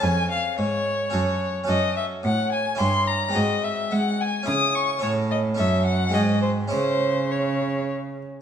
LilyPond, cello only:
\new Staff \with { instrumentName = "Cello" } { \clef bass \time 3/4 \key fis \dorian \tempo 4 = 108 eis,4 gis,4 fis,4 | \key cis \minor fis,4 a,4 g,4 | gis,4 gis4 cis4 | a,4 fis,4 gis,4 |
cis2~ cis8 r8 | }